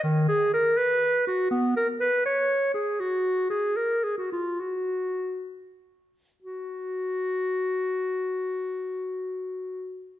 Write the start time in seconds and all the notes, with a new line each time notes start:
0.03 D#3
0.29 G#4
0.53 A#4
0.77 B4
1.27 F#4
1.51 B3
1.76 A#4
2.01 B4
2.26 C#5
2.74 G#4
3.00 F#4
3.50 G#4
3.77 A#4
4.04 G#4
4.18 F#4
4.32 F4
4.60 F#4
6.42 F#4